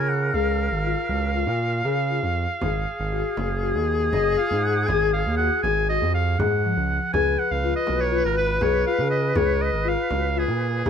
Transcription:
Already playing: analog synth bass C#3, marimba F4, clarinet A#4, oboe G#5
0.09 oboe F#5
0.34 analog synth bass C#2, marimba G#4, oboe F5
0.72 analog synth bass G#1
0.85 marimba F4
1.09 analog synth bass C#2, marimba F#4
1.35 marimba F4
1.46 analog synth bass A#2
1.85 analog synth bass C#3, marimba G#4
2.11 marimba F4
2.23 analog synth bass F2
2.61 analog synth bass G#1, clarinet G#4, marimba G#4, frame drum
3.00 analog synth bass G#1
3.12 marimba F#4, frame drum
3.37 analog synth bass F#1, marimba G#4, frame drum
3.63 marimba F#4
3.74 analog synth bass D#2
4.11 analog synth bass F#1, marimba G#4, oboe D#5, frame drum
4.37 marimba F4, oboe F5, frame drum
4.51 analog synth bass G#2
4.63 oboe F#5, frame drum
4.87 analog synth bass G#1, marimba G#4, oboe G#5, frame drum
5.13 oboe F5
5.26 analog synth bass D#2
5.37 marimba F#4, oboe F#5
5.63 analog synth bass G#1, marimba G#4, oboe G#5, frame drum
5.89 marimba F#4, oboe D#5
6.02 analog synth bass F2
6.15 oboe F5
6.39 analog synth bass G#2, marimba G#4, oboe F#5, frame drum
6.65 marimba F3, frame drum
6.77 analog synth bass C#2
6.90 frame drum
7.13 analog synth bass C#2, marimba G#4, clarinet B4, oboe G#5, frame drum
7.39 oboe F#5
7.51 analog synth bass C#2, oboe F5
7.64 marimba F4, frame drum
7.76 oboe D#5
7.87 analog synth bass B1, marimba F#4, frame drum
8.01 oboe C#5
8.12 marimba F4
8.25 analog synth bass G#1, oboe A#4
8.37 oboe B4
8.61 analog synth bass B1, marimba G#4, oboe C#5, frame drum
8.86 marimba F4, oboe F5, frame drum
8.99 analog synth bass C#3
9.11 oboe D#5, frame drum
9.35 analog synth bass C#2, marimba G#4, oboe C#5, frame drum
9.62 oboe D#5
9.73 analog synth bass G#1
9.85 marimba F4, oboe F5, frame drum
10.10 analog synth bass C#2, marimba F#4, frame drum
10.36 marimba F4, oboe G#4
10.48 analog synth bass A#2
10.85 analog synth bass C#3, marimba G#4, frame drum

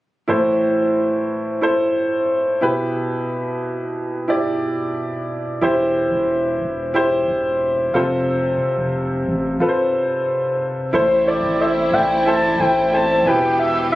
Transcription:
0.28 upright piano A2 E3 E4 A4 C5
1.61 upright piano E4 A4 C5
2.61 upright piano B2 E4 G4 B4
4.28 upright piano E4 G4 D5
5.61 analog synth bass E1, upright piano E3 E4 G4 C5
6.12 analog synth bass E1
6.62 analog synth bass E1
6.94 upright piano E4 G4 C5
7.28 analog synth bass E1
7.94 analog synth bass F1, upright piano C3 F4 A4 C5
8.78 analog synth bass F1
9.27 analog synth bass A1
9.60 upright piano F4 A4 B4
9.69 upright piano C5
10.93 analog synth bass A1, upright piano A2 E3 E4 A4 C5, string section A3 C4 E4, soft synth lead C5
11.26 upright piano E4 A4 D5, soft synth lead D5
11.44 analog synth bass A1
11.59 upright piano E4 A4 C5, soft synth lead E5
11.93 analog synth bass A1, upright piano E4 A4 D5, soft synth lead G5
12.26 upright piano E4 A4 C5, soft synth lead A5
12.59 analog synth bass A1, upright piano E4 A4 C5, soft synth lead G5
12.92 upright piano E4 A4 C5, soft synth lead A5
13.26 analog synth bass E1, upright piano B2 E4 G4 B4, string section E3 B3 G4, soft synth lead G5
13.60 soft synth lead E5
13.92 upright piano E4

